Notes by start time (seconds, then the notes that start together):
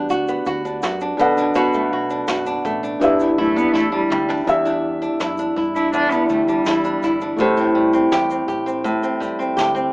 Already playing: E2 G3 B3 D4 G4 B4 F#5
0.10 D2 F#4, kick, shaker
0.28 B3, shaker
0.46 D2 F#4, kick, shaker
0.65 D4, shaker
0.82 F#2 F#4, snare, shaker
1.01 D4, shaker
1.17 B1 B2 D4 A4 B4 F#5, shaker
1.38 D4, shaker
1.55 B1 B2 F#4, kick, shaker
1.73 A3, shaker
1.92 B1 F#4
2.10 D4, shaker
2.28 F#1 F#4, snare, shaker
2.46 D4, shaker
2.65 A1 A3, kick, shaker
2.83 D4, shaker
3.00 E2 D4 E4 G4 B4, kick, shaker
3.04 E5
3.20 shaker
3.38 F#2 A3 E4, kick
3.56 B3 D4, shaker
3.74 E2 A3 E4, snare
3.92 G3 D4
4.10 D2 G3, mid tom
4.29 D4, floor tom
4.45 E2 D4 G4, kick, shaker
4.49 E5
4.65 D4, shaker
5.02 D4, shaker
5.20 F#2 E4, snare, shaker
5.38 D4, shaker
5.56 G2 E4, kick
5.75 D4 E4, shaker
5.93 E2 D4, kick, shaker
6.11 B3 D4, shaker
6.29 D2 G3 A3, kick, shaker
6.47 G3 D4, shaker
6.65 E2 E4, snare, shaker
6.84 D4, shaker
7.02 G1 E4, snare, shaker
7.21 D4, shaker
7.37 A1 A2 A3 G4, kick, shaker
7.41 C5
7.57 C4, shaker
7.75 A1 G3
7.93 C4, shaker
8.12 E2 G4, snare, shaker
8.30 C4, shaker
8.48 A1 G4, kick, shaker
8.66 C4, shaker
8.84 A2, kick, shaker
9.03 C4, shaker
9.20 G3, kick, shaker
9.39 C4, shaker
9.57 D2 G4, snare, shaker
9.75 C4, shaker